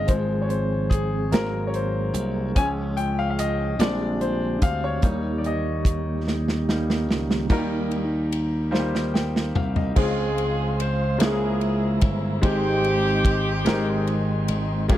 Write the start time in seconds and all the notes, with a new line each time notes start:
Already playing: D#3 G#3 C4 G#4 D#5 F5 G#5
0.07 G#1 F3 G#3 C4 C5, kick, closed hi-hat
0.42 C#5
0.49 C5, closed hi-hat
0.90 G#4, kick, closed hi-hat
1.31 G#1 F#3 A#3 C4 A#4, snare, closed hi-hat
1.67 C#5
1.74 C5, closed hi-hat
2.14 C2, closed hi-hat
2.55 C#2 F3 G#3 C#4 G#5, kick, closed hi-hat
2.97 G5, closed hi-hat
3.19 F5
3.31 F5
3.39 D#5, closed hi-hat
3.79 A#1 D3 G3 G#3 C4 D4 G4 D5, snare, closed hi-hat
4.21 C5, closed hi-hat
4.62 D2 F5, kick, closed hi-hat
4.84 C#5
5.02 D#2 D#3 G3 A#3 D#4, kick, closed hi-hat
5.38 D5
5.44 D#5, closed hi-hat
5.85 kick, closed hi-hat
6.28 snare
6.48 snare
6.69 G3 A#3 D#4, snare
6.90 snare
7.09 C#2, snare
7.31 snare
7.49 D#2 D#3 G3 A#3 D#4 F#4 A#4, kick, crash
7.58 G4
7.91 ride bell
8.32 ride bell
8.71 G3 A#3 D#4 F4 C5, snare
8.79 G4
8.95 snare
9.14 G5, snare
9.36 snare
9.55 C2 F5, floor tom
9.76 D#5, floor tom
9.95 C#2 C#3 G#3 C4 D#4 F4 G#4 C5 F5 C6, kick, crash
10.03 F4
10.38 ride bell
10.80 C5, ride bell
11.18 C#2 C#3 G#3 A#3 C#4 D#4 E4 G#4 E5 A#5, snare, ride bell
11.26 E4
11.61 ride bell
12.01 G1, kick, ride bell
12.42 G#1 G#2 G#3 C4 D#4 G4 C5 D#5 G5 C6, kick, ride bell
12.84 ride bell
13.25 kick, ride bell
13.65 G#1 G#3 C4 D#4 G4 A#4, snare, ride bell
14.07 ride bell
14.48 G#1, ride bell
14.88 A#1 A#2 G#3 A#3 C#4 F4 G4 G#4 F5 A#5 C#6, kick, ride bell